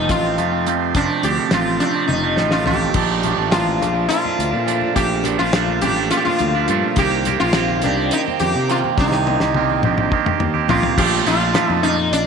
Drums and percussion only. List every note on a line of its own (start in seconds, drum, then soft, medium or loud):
0.09 kick medium
0.09 closed hi-hat medium
0.38 closed hi-hat medium
0.66 closed hi-hat medium
0.95 kick loud
0.95 closed hi-hat medium
1.23 closed hi-hat medium
1.51 snare medium
1.51 closed hi-hat medium
1.80 closed hi-hat medium
2.09 high tom medium
2.37 snare medium
2.51 snare medium
2.66 floor tom medium
2.94 kick loud
2.94 crash loud
2.94 high conga medium
2.94 low conga soft
3.10 low conga soft
3.23 closed hi-hat medium
3.23 low conga loud
3.52 snare loud
3.52 closed hi-hat medium
3.68 high conga medium
3.82 closed hi-hat medium
3.82 low conga loud
4.10 closed hi-hat medium
4.25 low conga medium
4.40 closed hi-hat medium
4.40 high conga medium
4.54 low conga soft
4.68 closed hi-hat medium
4.68 low conga soft
4.81 low conga medium
4.96 kick loud
4.96 closed hi-hat medium
4.96 high conga loud
4.96 low conga soft
5.24 closed hi-hat medium
5.24 low conga loud
5.53 snare loud
5.53 closed hi-hat medium
5.68 high conga medium
5.82 closed hi-hat medium
5.82 low conga medium
6.11 snare soft
6.11 closed hi-hat medium
6.27 low conga medium
6.39 closed hi-hat medium
6.39 high conga medium
6.68 closed hi-hat medium
6.68 low conga soft
6.96 kick loud
6.96 closed hi-hat medium
6.96 high conga medium
6.96 low conga soft
7.13 low conga soft
7.25 closed hi-hat medium
7.25 low conga loud
7.53 snare loud
7.53 closed hi-hat medium
7.69 high conga medium
7.82 closed hi-hat medium
7.82 low conga medium
8.11 closed hi-hat medium
8.28 low conga medium
8.40 closed hi-hat medium
8.40 high conga medium
8.56 low conga soft
8.69 closed hi-hat medium
8.84 low conga medium
8.98 kick loud
8.98 snare medium
8.98 high conga loud
9.12 snare soft
9.27 low conga loud
9.40 snare medium
9.54 high tom medium
9.54 low conga soft
9.70 high conga medium
9.83 mid tom medium
9.83 low conga loud
9.98 mid tom medium
10.12 kick loud
10.12 low conga soft
10.26 mid tom medium
10.26 low conga medium
10.40 mid tom medium
10.40 high conga loud
10.54 high conga medium
10.68 floor tom medium
10.68 low conga medium
10.83 floor tom medium
10.83 low conga medium
10.98 kick loud
10.98 crash loud
10.98 high conga medium
10.98 low conga soft
11.27 closed hi-hat medium
11.54 snare loud
11.54 closed hi-hat medium
11.54 low conga loud
11.70 high conga medium
11.84 closed hi-hat medium
12.13 closed hi-hat medium